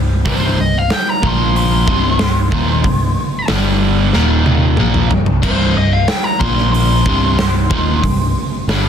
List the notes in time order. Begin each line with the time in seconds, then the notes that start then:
Already playing: C1 C2 G2
0.25 C1 C2 G2 C3 C5, kick, open hi-hat
0.58 C1 C2 G2 D#5
0.78 F5
0.90 G5, snare, open hi-hat
1.09 A#5
1.23 A#1 A#2 F3 A#3 C6, kick
1.56 C6, open hi-hat
1.87 C1 C2 G2 C3, kick
2.19 C1 C2 G2, snare, open hi-hat
2.51 D#1 D#2 A#2 D#3, kick
2.84 C1 C2 G2, kick, open hi-hat
3.48 G1 G2 D3 G3, snare, open hi-hat
4.13 D#1 D#2 A#2 D#3, snare
4.46 high tom
4.77 A#1 A#2 F3 A#3, mid tom
4.94 mid tom
5.11 C1 C2 G2, floor tom
5.26 floor tom
5.42 C1 C2 G2 C3 C5, kick, crash
5.74 C1 C2 G2 D#5
5.93 F5
6.08 G5, snare, open hi-hat
6.24 A#5
6.39 A#1 A#2 F3 A#3 C6, kick
6.58 snare
6.72 C6, open hi-hat
7.06 C1 C2 G2 C3, kick
7.38 C1 C2 G2, snare, open hi-hat
7.70 D#1 D#2 A#2 D#3, kick
8.03 C1 C2 G2, kick, open hi-hat
8.68 G1 G2 D3 G3, snare, open hi-hat